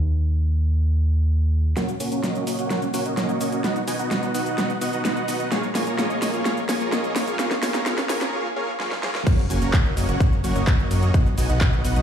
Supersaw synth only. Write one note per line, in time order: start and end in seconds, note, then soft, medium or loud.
1.77 1.91 A#3 medium
1.77 1.91 C#4 medium
1.77 1.91 F#4 medium
1.77 1.91 C#5 medium
1.77 1.92 F#5 loud
2.00 2.09 A#3 medium
2.00 2.09 C#4 medium
2.00 2.09 F#4 medium
2.00 2.09 C#5 medium
2.00 2.09 G#5 medium
2.12 2.22 A#3 medium
2.12 2.22 C#4 medium
2.12 2.22 F#4 medium
2.12 2.22 C#5 medium
2.12 2.22 A#5 medium
2.23 2.44 A#3 medium
2.23 2.44 C#4 medium
2.23 2.44 F#4 medium
2.23 2.44 C#5 medium
2.23 2.44 D#5 medium
2.47 2.57 A#3 medium
2.47 2.57 C#4 medium
2.47 2.57 F#4 medium
2.47 2.57 C#5 medium
2.47 2.57 D#5 medium
2.59 2.69 A#3 medium
2.59 2.69 C#4 medium
2.59 2.69 F#4 medium
2.59 2.69 C#5 medium
2.59 2.69 F#5 medium
2.70 2.85 A#3 medium
2.70 2.85 C#4 medium
2.70 2.85 F#4 medium
2.70 2.85 C#5 medium
2.70 2.85 F#5 medium
2.94 3.04 A#3 medium
2.94 3.04 C#4 medium
2.94 3.04 F#4 medium
2.94 3.04 C#5 medium
2.94 3.04 F#5 loud
3.05 3.14 A#3 medium
3.05 3.14 C#4 medium
3.05 3.14 F#4 medium
3.05 3.14 C#5 medium
3.05 3.14 D#5 medium
3.17 3.38 A#3 medium
3.17 3.38 C#4 medium
3.17 3.38 F#4 medium
3.17 3.38 C#5 medium
3.17 3.38 D#5 loud
3.41 3.61 A#3 medium
3.41 3.61 C#4 medium
3.41 3.61 F#4 medium
3.41 3.61 C#5 medium
3.41 3.61 D#5 loud
3.64 3.79 B3 medium
3.64 3.79 D#4 medium
3.64 3.79 F#4 medium
3.64 3.79 D#5 medium
3.64 3.79 F#5 loud
3.88 3.97 B3 medium
3.88 3.97 D#4 medium
3.88 3.97 F#4 medium
3.88 3.97 D#5 medium
3.88 3.97 G#5 loud
3.99 4.09 B3 medium
3.99 4.09 D#4 medium
3.99 4.09 F#4 medium
3.99 4.09 D#5 medium
3.99 4.09 F#5 medium
4.11 4.32 B3 medium
4.11 4.32 D#4 medium
4.11 4.32 F#4 medium
4.11 4.32 D#5 medium
4.11 4.32 F#5 medium
4.34 4.44 B3 medium
4.34 4.44 D#4 medium
4.34 4.44 F#4 medium
4.34 4.44 D#5 medium
4.34 4.44 F#5 medium
4.46 4.56 B3 medium
4.46 4.56 D#4 medium
4.46 4.56 F#4 medium
4.46 4.56 D#5 medium
4.46 4.56 F#5 medium
4.58 4.73 B3 medium
4.58 4.73 D#4 medium
4.58 4.73 F#4 medium
4.58 4.73 D#5 medium
4.58 4.73 F#5 medium
4.81 4.91 B3 medium
4.81 4.91 D#4 medium
4.81 4.91 F#4 medium
4.81 4.91 D#5 medium
4.81 4.91 F#5 loud
4.93 5.02 B3 medium
4.93 5.02 D#4 medium
4.93 5.02 F#4 medium
4.93 5.02 D#5 medium
4.93 5.02 F#5 medium
5.05 5.25 B3 loud
5.05 5.25 D#4 medium
5.05 5.25 F#4 medium
5.05 5.25 D#5 medium
5.05 5.25 F#5 loud
5.28 5.49 B3 medium
5.28 5.49 D#4 medium
5.28 5.49 F#4 medium
5.28 5.49 D#5 medium
5.28 5.49 F#5 loud
5.52 5.66 A#3 medium
5.52 5.66 F4 medium
5.52 5.66 G#4 medium
5.52 5.67 C#5 medium
5.52 5.66 F5 medium
5.75 5.84 A#3 medium
5.75 5.84 F4 medium
5.75 5.84 G#4 medium
5.75 5.84 C#5 medium
5.75 5.84 G#5 medium
5.87 5.97 A#3 medium
5.87 5.97 F4 medium
5.87 5.97 G#4 medium
5.87 5.97 C#5 medium
5.87 5.97 A#5 medium
5.98 6.19 A#3 medium
5.98 6.19 F4 medium
5.98 6.19 G#4 medium
5.98 6.19 C#5 medium
5.98 6.19 D#5 medium
6.22 6.32 A#3 medium
6.22 6.32 F4 medium
6.22 6.32 G#4 medium
6.22 6.32 C#5 medium
6.22 6.32 D#5 medium
6.34 6.44 A#3 medium
6.34 6.44 F4 medium
6.34 6.44 G#4 medium
6.34 6.44 C#5 medium
6.34 6.44 F5 medium
6.45 6.60 A#3 medium
6.45 6.60 F4 medium
6.45 6.60 G#4 medium
6.45 6.60 C#5 medium
6.45 6.60 F5 loud
6.69 6.78 A#3 medium
6.69 6.78 F4 medium
6.69 6.78 G#4 medium
6.69 6.78 C#5 medium
6.69 6.78 G#5 medium
6.81 6.91 A#3 medium
6.81 6.91 F4 medium
6.81 6.91 G#4 medium
6.81 6.91 C#5 medium
6.81 6.91 A#5 medium
6.92 7.13 A#3 medium
6.92 7.13 F4 medium
6.92 7.13 G#4 medium
6.92 7.13 C#5 medium
6.92 7.13 D#5 medium
7.16 7.26 A#3 medium
7.16 7.26 F4 medium
7.16 7.26 G#4 medium
7.16 7.26 C#5 medium
7.16 7.26 D#5 medium
7.27 7.37 A#3 medium
7.27 7.37 F4 medium
7.27 7.37 G#4 medium
7.27 7.37 C#5 medium
7.27 7.37 F5 medium
7.39 7.54 A#3 medium
7.39 7.54 F4 medium
7.39 7.54 G#4 medium
7.39 7.54 C#5 medium
7.39 7.54 F5 loud
7.63 7.72 A#3 medium
7.63 7.72 F4 medium
7.63 7.72 G#4 medium
7.63 7.72 C#5 medium
7.63 7.72 G#5 loud
7.74 7.84 A#3 medium
7.74 7.84 F4 medium
7.74 7.84 G#4 medium
7.74 7.84 C#5 medium
7.74 7.84 A#5 medium
7.86 8.01 A#3 medium
7.86 8.01 F4 medium
7.86 8.01 G#4 medium
7.86 8.01 C#5 medium
7.86 8.01 F5 loud
8.09 8.18 A#3 medium
8.09 8.18 F4 medium
8.09 8.18 G#4 medium
8.09 8.18 C#5 medium
8.09 8.18 G#5 loud
8.21 8.31 A#3 medium
8.21 8.31 F4 medium
8.21 8.31 G#4 medium
8.21 8.31 C#5 medium
8.21 8.31 A#5 medium
8.33 8.48 A#3 medium
8.33 8.48 F4 medium
8.33 8.48 G#4 medium
8.33 8.48 C#5 medium
8.33 8.48 F5 loud
8.56 8.71 A#3 medium
8.56 8.71 F4 medium
8.56 8.71 G#4 medium
8.56 8.71 C#5 medium
8.56 8.71 F5 loud
8.80 8.95 A#3 medium
8.80 8.95 F4 medium
8.80 8.95 G#4 medium
8.80 8.95 C#5 medium
8.80 8.95 F5 loud
9.03 9.18 A#3 loud
9.03 9.18 F4 medium
9.03 9.18 G#4 medium
9.03 9.18 C#5 medium
9.03 9.18 F5 loud
9.27 9.41 A#3 medium
9.27 9.41 C#4 medium
9.27 9.41 F#4 medium
9.27 9.41 C#5 medium
9.27 9.41 F#5 loud
9.50 9.59 A#3 medium
9.50 9.59 C#4 medium
9.50 9.59 F#4 medium
9.50 9.59 C#5 medium
9.50 9.59 G#5 loud
9.62 9.72 A#3 medium
9.62 9.72 C#4 medium
9.62 9.72 F#4 medium
9.62 9.72 C#5 medium
9.62 9.72 A#5 medium
9.74 9.94 F#4 medium
9.97 10.07 A#3 medium
9.97 10.07 C#4 medium
9.97 10.07 F#4 medium
9.97 10.07 C#5 medium
9.97 10.07 D#5 loud
10.09 10.19 A#3 medium
10.09 10.19 C#4 medium
10.09 10.19 F#4 medium
10.09 10.19 C#5 medium
10.09 10.19 F#5 medium
10.20 10.35 C#4 medium
10.20 10.35 C#5 medium
10.44 10.54 A#3 medium
10.44 10.54 C#4 medium
10.44 10.54 F#4 medium
10.44 10.54 C#5 medium
10.44 10.54 F#5 loud
10.55 10.64 A#3 medium
10.55 10.64 C#4 medium
10.55 10.64 F#4 medium
10.55 10.64 C#5 medium
10.55 10.64 D#5 medium
10.91 11.11 A#3 medium
10.91 11.11 C#4 medium
10.91 11.11 F#4 medium
10.91 11.11 C#5 medium
10.91 11.11 D#5 loud
11.14 11.29 B3 medium
11.14 11.29 D#4 medium
11.14 11.29 F#4 medium
11.14 11.29 F#5 loud
11.38 11.47 B3 medium
11.38 11.47 D#4 medium
11.38 11.47 F#4 medium
11.38 11.47 D#5 medium
11.38 11.47 G#5 loud
11.49 11.59 B3 medium
11.49 11.59 D#4 medium
11.49 11.59 F#4 medium
11.49 11.59 D#5 medium
11.49 11.59 F#5 medium
11.61 11.82 B3 medium
11.61 11.82 D#4 medium
11.61 11.82 F#4 medium
11.61 11.82 D#5 medium
11.85 11.95 B3 medium
11.85 11.95 D#4 medium
11.85 11.95 F#4 medium
11.85 11.95 D#5 medium
11.85 11.95 F#5 loud
11.96 12.02 B3 medium
11.96 12.02 D#4 medium
11.96 12.02 F#4 medium
11.96 12.02 D#5 medium
11.96 12.02 F#5 medium